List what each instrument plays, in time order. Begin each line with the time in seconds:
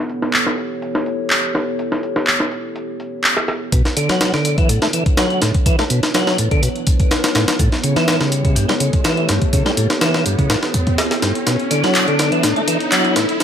Already playing: analog synth pad B3 E4 G4 A4 C#5
0.10 closed hi-hat
0.22 snare
0.34 clap, closed hi-hat
0.47 snare
0.58 closed hi-hat
0.82 closed hi-hat
0.95 snare
1.06 closed hi-hat
1.30 clap, closed hi-hat
1.55 snare, closed hi-hat
1.79 closed hi-hat
1.92 snare
2.03 closed hi-hat
2.16 snare
2.27 clap, closed hi-hat
2.40 snare
2.51 closed hi-hat
2.76 closed hi-hat
3.00 closed hi-hat
3.24 clap, closed hi-hat
3.37 snare
3.48 snare, closed hi-hat
3.72 tonewheel organ B2, analog synth pad B3 D4 E4 A4 C#5, kick, closed hi-hat, riser
3.85 snare, closed hi-hat
3.97 tonewheel organ D3, closed hi-hat
4.09 tonewheel organ F#3, snare, closed hi-hat
4.21 snare, closed hi-hat
4.34 tonewheel organ D3, snare, closed hi-hat
4.45 closed hi-hat
4.58 tonewheel organ E3, kick, closed hi-hat
4.69 tonewheel organ A2, closed hi-hat
4.82 tonewheel organ A3, snare, closed hi-hat
4.93 tonewheel organ E3, closed hi-hat
5.06 kick, closed hi-hat
5.17 tonewheel organ F#3, snare, closed hi-hat
5.30 closed hi-hat
5.42 tonewheel organ A2, snare, closed hi-hat
5.54 kick, closed hi-hat
5.66 tonewheel organ E3, analog synth pad B4, kick, closed hi-hat
5.79 tonewheel organ A3, snare, closed hi-hat
5.90 tonewheel organ B2, closed hi-hat
6.03 snare, closed hi-hat
6.14 tonewheel organ F#3, snare, closed hi-hat
6.27 snare, closed hi-hat
6.38 tonewheel organ A2, closed hi-hat
6.51 tonewheel organ D3, kick, closed hi-hat
6.63 tonewheel organ B2, closed hi-hat
6.76 closed hi-hat
6.87 kick, closed hi-hat
7.00 kick, closed hi-hat
7.11 snare, closed hi-hat
7.24 snare, closed hi-hat
7.35 tonewheel organ A2, snare, closed hi-hat
7.48 snare, closed hi-hat
7.59 tonewheel organ A2, analog synth pad G4 A4, kick, closed hi-hat
7.72 snare, closed hi-hat
7.84 tonewheel organ C#3, closed hi-hat
7.96 tonewheel organ E3, snare, closed hi-hat
8.08 snare, closed hi-hat
8.20 tonewheel organ C#3, snare, closed hi-hat
8.32 closed hi-hat
8.45 tonewheel organ C#3, kick, closed hi-hat
8.56 tonewheel organ G2, closed hi-hat
8.69 tonewheel organ G3, snare, closed hi-hat
8.80 tonewheel organ C#3, closed hi-hat
8.93 kick, closed hi-hat
9.04 tonewheel organ E3, snare, closed hi-hat
9.17 closed hi-hat
9.29 tonewheel organ G2, snare, closed hi-hat
9.42 kick, closed hi-hat
9.53 tonewheel organ C#3, kick, closed hi-hat
9.66 tonewheel organ G3, snare, closed hi-hat
9.77 tonewheel organ A2, closed hi-hat
9.90 snare, closed hi-hat
10.01 tonewheel organ E3, snare, closed hi-hat
10.14 snare, closed hi-hat
10.26 tonewheel organ G2, closed hi-hat
10.39 tonewheel organ C#3, kick, closed hi-hat
10.50 tonewheel organ A2, snare, closed hi-hat
10.63 snare, closed hi-hat
10.74 kick, closed hi-hat
10.87 kick, closed hi-hat
10.98 snare, closed hi-hat
11.11 snare, closed hi-hat
11.22 tonewheel organ G2, snare, closed hi-hat
11.35 closed hi-hat
11.47 tonewheel organ B2, analog synth pad D4, snare, closed hi-hat
11.59 closed hi-hat
11.71 tonewheel organ D3, closed hi-hat
11.83 tonewheel organ F#3, snare, closed hi-hat
11.95 clap, closed hi-hat
12.08 tonewheel organ D3, closed hi-hat
12.19 snare, closed hi-hat
12.32 tonewheel organ E3, closed hi-hat
12.43 tonewheel organ A2, snare, closed hi-hat
12.56 tonewheel organ A3, closed hi-hat
12.68 tonewheel organ E3, closed hi-hat
12.80 closed hi-hat
12.92 tonewheel organ F#3, clap, closed hi-hat
13.05 closed hi-hat
13.16 tonewheel organ A2, snare, closed hi-hat
13.29 closed hi-hat
13.40 tonewheel organ E3, snare, closed hi-hat